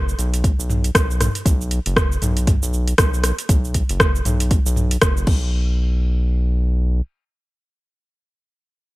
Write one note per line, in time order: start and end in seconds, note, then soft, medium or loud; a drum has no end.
0.00 0.14 F#1 medium
0.09 cabasa medium
0.18 0.52 B1 loud
0.18 closed hi-hat soft
0.18 cabasa medium
0.34 closed hi-hat soft
0.34 cabasa medium
0.44 kick loud
0.44 closed hi-hat medium
0.44 cabasa medium
0.59 0.90 B1 medium
0.59 cabasa loud
0.70 mid tom medium
0.70 cabasa medium
0.84 closed hi-hat soft
0.84 cabasa medium
0.95 1.29 B1 medium
0.95 kick loud
0.95 cross-stick loud
0.95 closed hi-hat medium
0.95 cabasa medium
1.11 cabasa medium
1.21 cross-stick medium
1.21 closed hi-hat medium
1.21 mid tom loud
1.21 cabasa medium
1.35 closed hi-hat soft
1.35 cabasa medium
1.46 1.79 B1 loud
1.46 kick loud
1.46 closed hi-hat medium
1.46 cabasa medium
1.61 cabasa medium
1.71 closed hi-hat medium
1.71 cabasa soft
1.86 2.17 F#1 medium
1.86 closed hi-hat soft
1.86 cabasa medium
1.96 kick loud
1.96 cross-stick loud
1.96 cabasa medium
2.12 cabasa medium
2.22 2.56 B1 loud
2.22 closed hi-hat soft
2.22 mid tom medium
2.22 cabasa medium
2.37 closed hi-hat soft
2.37 cabasa medium
2.47 kick loud
2.47 closed hi-hat medium
2.47 mid tom medium
2.47 cabasa soft
2.62 2.94 B1 medium
2.62 cabasa medium
2.73 cabasa medium
2.88 closed hi-hat soft
2.88 cabasa medium
2.98 3.32 B1 medium
2.98 kick loud
2.98 cross-stick loud
2.98 closed hi-hat medium
2.98 cabasa medium
3.14 cabasa soft
3.24 cross-stick medium
3.24 closed hi-hat medium
3.24 cabasa medium
3.38 closed hi-hat soft
3.38 cabasa medium
3.49 3.83 B1 loud
3.49 kick loud
3.49 closed hi-hat medium
3.49 cabasa medium
3.65 cabasa medium
3.74 kick medium
3.74 closed hi-hat medium
3.74 cabasa medium
3.89 4.21 F#1 medium
3.89 closed hi-hat soft
3.89 cabasa soft
4.00 kick loud
4.00 cross-stick loud
4.00 cabasa medium
4.16 cabasa medium
4.25 4.59 B1 loud
4.25 closed hi-hat soft
4.25 mid tom medium
4.25 cabasa medium
4.40 closed hi-hat medium
4.40 cabasa medium
4.51 kick loud
4.51 closed hi-hat medium
4.51 cabasa medium
4.66 4.97 B1 loud
4.66 cabasa medium
4.76 mid tom medium
4.76 cabasa medium
4.91 closed hi-hat soft
4.91 cabasa medium
5.01 5.26 F#1 loud
5.01 kick loud
5.01 cross-stick loud
5.01 closed hi-hat medium
5.01 cabasa medium
5.17 cabasa medium
5.27 7.01 B1 loud
5.27 kick loud
5.27 crash medium